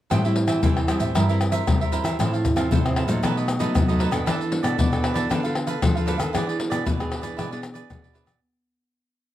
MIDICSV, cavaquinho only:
0, 0, Header, 1, 3, 480
1, 0, Start_track
1, 0, Tempo, 519481
1, 102, Time_signature, 4, 2, 24, 8
1, 8636, End_track
2, 0, Start_track
2, 0, Title_t, "Cavaquinho"
2, 0, Program_c, 0, 24
2, 93, Note_on_c, 0, 69, 58
2, 102, Note_on_c, 0, 72, 72
2, 108, Note_on_c, 0, 76, 73
2, 114, Note_on_c, 0, 79, 78
2, 208, Note_off_c, 0, 69, 0
2, 209, Note_off_c, 0, 79, 0
2, 213, Note_off_c, 0, 72, 0
2, 216, Note_off_c, 0, 76, 0
2, 220, Note_on_c, 0, 79, 41
2, 232, Note_on_c, 0, 76, 40
2, 240, Note_on_c, 0, 72, 36
2, 322, Note_off_c, 0, 72, 0
2, 326, Note_off_c, 0, 76, 0
2, 328, Note_off_c, 0, 79, 0
2, 437, Note_on_c, 0, 79, 65
2, 448, Note_on_c, 0, 76, 63
2, 457, Note_on_c, 0, 72, 56
2, 561, Note_off_c, 0, 79, 0
2, 566, Note_off_c, 0, 76, 0
2, 571, Note_off_c, 0, 72, 0
2, 577, Note_on_c, 0, 69, 53
2, 586, Note_on_c, 0, 72, 52
2, 592, Note_on_c, 0, 76, 58
2, 596, Note_on_c, 0, 79, 59
2, 796, Note_off_c, 0, 69, 0
2, 803, Note_off_c, 0, 72, 0
2, 807, Note_on_c, 0, 69, 49
2, 811, Note_off_c, 0, 76, 0
2, 814, Note_on_c, 0, 72, 55
2, 816, Note_off_c, 0, 79, 0
2, 822, Note_on_c, 0, 76, 56
2, 827, Note_on_c, 0, 79, 57
2, 906, Note_off_c, 0, 79, 0
2, 917, Note_on_c, 0, 79, 58
2, 918, Note_off_c, 0, 76, 0
2, 926, Note_off_c, 0, 69, 0
2, 926, Note_off_c, 0, 72, 0
2, 929, Note_on_c, 0, 76, 60
2, 938, Note_on_c, 0, 72, 54
2, 1042, Note_off_c, 0, 79, 0
2, 1047, Note_off_c, 0, 76, 0
2, 1052, Note_off_c, 0, 72, 0
2, 1060, Note_on_c, 0, 64, 68
2, 1069, Note_on_c, 0, 70, 72
2, 1075, Note_on_c, 0, 72, 76
2, 1080, Note_on_c, 0, 76, 76
2, 1173, Note_off_c, 0, 64, 0
2, 1177, Note_off_c, 0, 70, 0
2, 1180, Note_off_c, 0, 72, 0
2, 1180, Note_off_c, 0, 76, 0
2, 1191, Note_on_c, 0, 76, 42
2, 1201, Note_on_c, 0, 72, 44
2, 1210, Note_on_c, 0, 70, 34
2, 1287, Note_off_c, 0, 70, 0
2, 1291, Note_off_c, 0, 72, 0
2, 1296, Note_off_c, 0, 76, 0
2, 1401, Note_on_c, 0, 76, 74
2, 1411, Note_on_c, 0, 72, 65
2, 1420, Note_on_c, 0, 70, 58
2, 1644, Note_off_c, 0, 76, 0
2, 1649, Note_off_c, 0, 72, 0
2, 1654, Note_off_c, 0, 70, 0
2, 1673, Note_on_c, 0, 76, 50
2, 1683, Note_on_c, 0, 72, 48
2, 1691, Note_on_c, 0, 70, 42
2, 1770, Note_off_c, 0, 70, 0
2, 1773, Note_on_c, 0, 64, 68
2, 1779, Note_off_c, 0, 72, 0
2, 1780, Note_off_c, 0, 76, 0
2, 1782, Note_on_c, 0, 70, 68
2, 1790, Note_on_c, 0, 72, 68
2, 1796, Note_on_c, 0, 76, 66
2, 1877, Note_off_c, 0, 76, 0
2, 1886, Note_off_c, 0, 72, 0
2, 1888, Note_on_c, 0, 76, 53
2, 1890, Note_off_c, 0, 64, 0
2, 1894, Note_off_c, 0, 70, 0
2, 1897, Note_on_c, 0, 72, 53
2, 1906, Note_on_c, 0, 70, 43
2, 2007, Note_off_c, 0, 76, 0
2, 2012, Note_off_c, 0, 72, 0
2, 2017, Note_off_c, 0, 70, 0
2, 2030, Note_on_c, 0, 64, 66
2, 2037, Note_on_c, 0, 69, 67
2, 2043, Note_on_c, 0, 72, 71
2, 2050, Note_on_c, 0, 77, 67
2, 2139, Note_off_c, 0, 64, 0
2, 2141, Note_off_c, 0, 77, 0
2, 2142, Note_off_c, 0, 69, 0
2, 2145, Note_off_c, 0, 72, 0
2, 2152, Note_on_c, 0, 77, 46
2, 2164, Note_on_c, 0, 72, 39
2, 2173, Note_on_c, 0, 69, 35
2, 2250, Note_off_c, 0, 69, 0
2, 2253, Note_off_c, 0, 72, 0
2, 2255, Note_off_c, 0, 77, 0
2, 2368, Note_on_c, 0, 77, 69
2, 2379, Note_on_c, 0, 72, 60
2, 2388, Note_on_c, 0, 69, 54
2, 2488, Note_off_c, 0, 77, 0
2, 2493, Note_off_c, 0, 72, 0
2, 2498, Note_off_c, 0, 69, 0
2, 2507, Note_on_c, 0, 64, 60
2, 2517, Note_on_c, 0, 69, 58
2, 2523, Note_on_c, 0, 72, 61
2, 2529, Note_on_c, 0, 77, 60
2, 2727, Note_off_c, 0, 64, 0
2, 2734, Note_off_c, 0, 69, 0
2, 2738, Note_off_c, 0, 72, 0
2, 2738, Note_on_c, 0, 64, 53
2, 2745, Note_off_c, 0, 77, 0
2, 2746, Note_on_c, 0, 69, 54
2, 2749, Note_on_c, 0, 72, 60
2, 2757, Note_on_c, 0, 77, 58
2, 2835, Note_off_c, 0, 77, 0
2, 2845, Note_off_c, 0, 72, 0
2, 2846, Note_on_c, 0, 77, 51
2, 2852, Note_off_c, 0, 64, 0
2, 2856, Note_off_c, 0, 69, 0
2, 2856, Note_on_c, 0, 72, 58
2, 2866, Note_on_c, 0, 69, 45
2, 2967, Note_off_c, 0, 77, 0
2, 2972, Note_off_c, 0, 72, 0
2, 2977, Note_off_c, 0, 69, 0
2, 2983, Note_on_c, 0, 63, 75
2, 2992, Note_on_c, 0, 69, 83
2, 2998, Note_on_c, 0, 71, 84
2, 3002, Note_on_c, 0, 75, 79
2, 3095, Note_off_c, 0, 63, 0
2, 3099, Note_off_c, 0, 69, 0
2, 3102, Note_off_c, 0, 71, 0
2, 3105, Note_off_c, 0, 75, 0
2, 3115, Note_on_c, 0, 75, 46
2, 3126, Note_on_c, 0, 71, 44
2, 3136, Note_on_c, 0, 69, 40
2, 3213, Note_off_c, 0, 69, 0
2, 3218, Note_off_c, 0, 71, 0
2, 3221, Note_off_c, 0, 75, 0
2, 3321, Note_on_c, 0, 75, 77
2, 3334, Note_on_c, 0, 71, 68
2, 3342, Note_on_c, 0, 69, 56
2, 3564, Note_off_c, 0, 75, 0
2, 3570, Note_off_c, 0, 71, 0
2, 3574, Note_off_c, 0, 69, 0
2, 3586, Note_on_c, 0, 75, 56
2, 3595, Note_on_c, 0, 71, 48
2, 3606, Note_on_c, 0, 69, 42
2, 3685, Note_off_c, 0, 69, 0
2, 3686, Note_on_c, 0, 63, 66
2, 3692, Note_off_c, 0, 71, 0
2, 3696, Note_off_c, 0, 75, 0
2, 3696, Note_on_c, 0, 69, 65
2, 3703, Note_on_c, 0, 71, 73
2, 3706, Note_on_c, 0, 75, 79
2, 3787, Note_off_c, 0, 75, 0
2, 3798, Note_on_c, 0, 75, 56
2, 3799, Note_off_c, 0, 71, 0
2, 3806, Note_off_c, 0, 63, 0
2, 3808, Note_off_c, 0, 69, 0
2, 3810, Note_on_c, 0, 71, 54
2, 3819, Note_on_c, 0, 69, 45
2, 3922, Note_off_c, 0, 75, 0
2, 3928, Note_off_c, 0, 71, 0
2, 3933, Note_off_c, 0, 69, 0
2, 3938, Note_on_c, 0, 64, 67
2, 3947, Note_on_c, 0, 69, 73
2, 3953, Note_on_c, 0, 71, 75
2, 3956, Note_on_c, 0, 74, 77
2, 4052, Note_off_c, 0, 64, 0
2, 4055, Note_off_c, 0, 74, 0
2, 4057, Note_off_c, 0, 69, 0
2, 4059, Note_off_c, 0, 71, 0
2, 4066, Note_on_c, 0, 74, 44
2, 4076, Note_on_c, 0, 71, 42
2, 4086, Note_on_c, 0, 69, 41
2, 4164, Note_off_c, 0, 69, 0
2, 4169, Note_off_c, 0, 71, 0
2, 4170, Note_off_c, 0, 74, 0
2, 4275, Note_on_c, 0, 74, 61
2, 4285, Note_on_c, 0, 71, 53
2, 4295, Note_on_c, 0, 69, 59
2, 4400, Note_off_c, 0, 74, 0
2, 4405, Note_off_c, 0, 71, 0
2, 4410, Note_off_c, 0, 69, 0
2, 4417, Note_on_c, 0, 64, 54
2, 4424, Note_on_c, 0, 69, 59
2, 4432, Note_on_c, 0, 71, 59
2, 4436, Note_on_c, 0, 74, 64
2, 4632, Note_off_c, 0, 64, 0
2, 4641, Note_off_c, 0, 69, 0
2, 4643, Note_on_c, 0, 64, 52
2, 4647, Note_off_c, 0, 71, 0
2, 4652, Note_on_c, 0, 69, 56
2, 4654, Note_off_c, 0, 74, 0
2, 4658, Note_on_c, 0, 71, 61
2, 4665, Note_on_c, 0, 74, 51
2, 4739, Note_off_c, 0, 74, 0
2, 4750, Note_off_c, 0, 71, 0
2, 4750, Note_on_c, 0, 74, 67
2, 4761, Note_off_c, 0, 69, 0
2, 4761, Note_on_c, 0, 71, 51
2, 4764, Note_off_c, 0, 64, 0
2, 4772, Note_on_c, 0, 69, 49
2, 4877, Note_off_c, 0, 74, 0
2, 4883, Note_off_c, 0, 71, 0
2, 4888, Note_off_c, 0, 69, 0
2, 4892, Note_on_c, 0, 62, 68
2, 4899, Note_on_c, 0, 69, 82
2, 4907, Note_on_c, 0, 71, 70
2, 4911, Note_on_c, 0, 77, 75
2, 5006, Note_off_c, 0, 77, 0
2, 5008, Note_off_c, 0, 62, 0
2, 5012, Note_off_c, 0, 69, 0
2, 5015, Note_off_c, 0, 71, 0
2, 5017, Note_on_c, 0, 77, 50
2, 5031, Note_on_c, 0, 71, 42
2, 5038, Note_on_c, 0, 69, 43
2, 5121, Note_off_c, 0, 69, 0
2, 5123, Note_off_c, 0, 71, 0
2, 5127, Note_off_c, 0, 77, 0
2, 5236, Note_on_c, 0, 77, 74
2, 5248, Note_on_c, 0, 71, 69
2, 5257, Note_on_c, 0, 69, 60
2, 5479, Note_off_c, 0, 77, 0
2, 5485, Note_off_c, 0, 71, 0
2, 5490, Note_off_c, 0, 69, 0
2, 5501, Note_on_c, 0, 77, 49
2, 5511, Note_on_c, 0, 71, 47
2, 5522, Note_on_c, 0, 69, 37
2, 5596, Note_off_c, 0, 69, 0
2, 5597, Note_on_c, 0, 62, 70
2, 5603, Note_off_c, 0, 71, 0
2, 5607, Note_on_c, 0, 69, 68
2, 5608, Note_off_c, 0, 77, 0
2, 5614, Note_on_c, 0, 71, 71
2, 5619, Note_on_c, 0, 77, 74
2, 5698, Note_off_c, 0, 77, 0
2, 5707, Note_off_c, 0, 71, 0
2, 5709, Note_on_c, 0, 77, 51
2, 5716, Note_off_c, 0, 69, 0
2, 5718, Note_on_c, 0, 71, 51
2, 5720, Note_off_c, 0, 62, 0
2, 5727, Note_on_c, 0, 69, 44
2, 5836, Note_off_c, 0, 77, 0
2, 5840, Note_off_c, 0, 71, 0
2, 5845, Note_off_c, 0, 69, 0
2, 5848, Note_on_c, 0, 64, 67
2, 5856, Note_on_c, 0, 68, 63
2, 5862, Note_on_c, 0, 71, 68
2, 5868, Note_on_c, 0, 74, 65
2, 5965, Note_off_c, 0, 64, 0
2, 5967, Note_off_c, 0, 74, 0
2, 5969, Note_off_c, 0, 68, 0
2, 5972, Note_off_c, 0, 71, 0
2, 5978, Note_on_c, 0, 74, 45
2, 5991, Note_on_c, 0, 71, 43
2, 5999, Note_on_c, 0, 68, 35
2, 6079, Note_off_c, 0, 68, 0
2, 6083, Note_off_c, 0, 71, 0
2, 6085, Note_off_c, 0, 74, 0
2, 6190, Note_on_c, 0, 74, 65
2, 6203, Note_on_c, 0, 71, 58
2, 6211, Note_on_c, 0, 68, 51
2, 6316, Note_off_c, 0, 74, 0
2, 6322, Note_off_c, 0, 71, 0
2, 6326, Note_off_c, 0, 68, 0
2, 6333, Note_on_c, 0, 64, 53
2, 6341, Note_on_c, 0, 68, 55
2, 6347, Note_on_c, 0, 71, 62
2, 6353, Note_on_c, 0, 74, 57
2, 6554, Note_off_c, 0, 64, 0
2, 6561, Note_off_c, 0, 68, 0
2, 6565, Note_on_c, 0, 64, 45
2, 6567, Note_off_c, 0, 71, 0
2, 6572, Note_off_c, 0, 74, 0
2, 6572, Note_on_c, 0, 68, 53
2, 6579, Note_on_c, 0, 71, 52
2, 6583, Note_on_c, 0, 74, 55
2, 6655, Note_off_c, 0, 74, 0
2, 6667, Note_off_c, 0, 71, 0
2, 6667, Note_on_c, 0, 74, 61
2, 6677, Note_off_c, 0, 68, 0
2, 6678, Note_on_c, 0, 71, 54
2, 6683, Note_off_c, 0, 64, 0
2, 6688, Note_on_c, 0, 68, 47
2, 6794, Note_off_c, 0, 74, 0
2, 6799, Note_off_c, 0, 71, 0
2, 6804, Note_off_c, 0, 68, 0
2, 6807, Note_on_c, 0, 64, 69
2, 6817, Note_on_c, 0, 68, 66
2, 6823, Note_on_c, 0, 71, 71
2, 6827, Note_on_c, 0, 74, 78
2, 6924, Note_off_c, 0, 64, 0
2, 6928, Note_off_c, 0, 74, 0
2, 6929, Note_off_c, 0, 68, 0
2, 6932, Note_off_c, 0, 71, 0
2, 6939, Note_on_c, 0, 74, 44
2, 6950, Note_on_c, 0, 71, 46
2, 6958, Note_on_c, 0, 68, 39
2, 7034, Note_off_c, 0, 68, 0
2, 7035, Note_off_c, 0, 71, 0
2, 7037, Note_off_c, 0, 74, 0
2, 7149, Note_on_c, 0, 74, 72
2, 7159, Note_on_c, 0, 71, 62
2, 7169, Note_on_c, 0, 68, 58
2, 7394, Note_off_c, 0, 74, 0
2, 7399, Note_off_c, 0, 71, 0
2, 7404, Note_off_c, 0, 68, 0
2, 7411, Note_on_c, 0, 74, 52
2, 7426, Note_on_c, 0, 71, 45
2, 7433, Note_on_c, 0, 68, 47
2, 7513, Note_off_c, 0, 68, 0
2, 7516, Note_on_c, 0, 64, 64
2, 7517, Note_off_c, 0, 71, 0
2, 7524, Note_on_c, 0, 68, 71
2, 7526, Note_off_c, 0, 74, 0
2, 7529, Note_on_c, 0, 71, 69
2, 7535, Note_on_c, 0, 74, 64
2, 7614, Note_off_c, 0, 74, 0
2, 7624, Note_off_c, 0, 71, 0
2, 7625, Note_on_c, 0, 74, 48
2, 7635, Note_off_c, 0, 68, 0
2, 7636, Note_on_c, 0, 71, 45
2, 7638, Note_off_c, 0, 64, 0
2, 7646, Note_on_c, 0, 68, 43
2, 7752, Note_off_c, 0, 74, 0
2, 7758, Note_off_c, 0, 71, 0
2, 7763, Note_off_c, 0, 68, 0
2, 8636, End_track
3, 0, Start_track
3, 0, Title_t, "Muted cavaquinho strokes"
3, 331, Note_on_c, 9, 29, 30
3, 423, Note_off_c, 9, 29, 0
3, 1296, Note_on_c, 9, 29, 33
3, 1389, Note_off_c, 9, 29, 0
3, 2257, Note_on_c, 9, 29, 36
3, 2349, Note_off_c, 9, 29, 0
3, 3218, Note_on_c, 9, 29, 38
3, 3311, Note_off_c, 9, 29, 0
3, 4170, Note_on_c, 9, 29, 33
3, 4263, Note_off_c, 9, 29, 0
3, 5127, Note_on_c, 9, 29, 39
3, 5219, Note_off_c, 9, 29, 0
3, 6086, Note_on_c, 9, 29, 34
3, 6179, Note_off_c, 9, 29, 0
3, 7038, Note_on_c, 9, 29, 36
3, 7130, Note_off_c, 9, 29, 0
3, 8636, End_track
0, 0, End_of_file